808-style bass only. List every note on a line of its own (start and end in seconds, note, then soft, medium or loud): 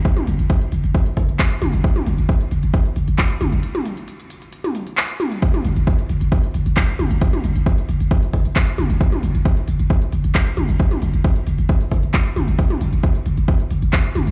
0.27 0.38 F#1 loud
0.39 0.50 F#1 medium
0.72 0.83 F#1 loud
0.84 0.94 F#1 medium
1.17 1.28 F#1 medium
1.29 1.39 F#1 medium
1.62 1.73 F#1 loud
1.74 1.84 F#1 medium
2.07 2.18 F#1 loud
2.18 2.29 F#1 medium
2.51 2.63 F#1 loud
2.63 2.74 F#1 medium
2.96 3.07 F#1 loud
3.08 3.18 F#1 medium
3.41 3.52 F#1 loud
3.53 3.63 F#1 medium
5.65 5.76 F#1 loud
5.76 5.87 F#1 medium
6.09 6.21 F#1 loud
6.21 6.32 F#1 medium
6.54 6.65 F#1 loud
6.66 6.76 F#1 medium
6.99 7.10 F#1 loud
7.11 7.21 F#1 medium
7.44 7.55 F#1 loud
7.56 7.66 F#1 medium
7.89 8.00 F#1 loud
8.00 8.11 F#1 medium
8.34 8.45 F#1 loud
8.45 8.56 F#1 medium
8.78 8.89 F#1 loud
8.90 9.00 F#1 medium
9.23 9.34 F#1 loud
9.35 9.45 F#1 medium
9.68 9.79 F#1 loud
9.80 9.90 F#1 medium
10.13 10.24 F#1 loud
10.24 10.35 F#1 medium
10.57 10.68 F#1 loud
10.69 10.79 F#1 medium
11.02 11.13 F#1 loud
11.14 11.24 F#1 medium
11.47 11.58 F#1 loud
11.58 11.69 F#1 medium
11.92 12.03 F#1 loud
12.03 12.14 F#1 medium
12.36 12.47 F#1 loud
12.48 12.58 F#1 medium
12.81 12.92 F#1 loud
12.93 13.03 F#1 medium
13.26 13.37 F#1 loud
13.37 13.48 F#1 medium
13.71 13.82 F#1 loud
13.82 13.93 F#1 medium
14.15 14.27 F#1 loud
14.27 14.31 F#1 medium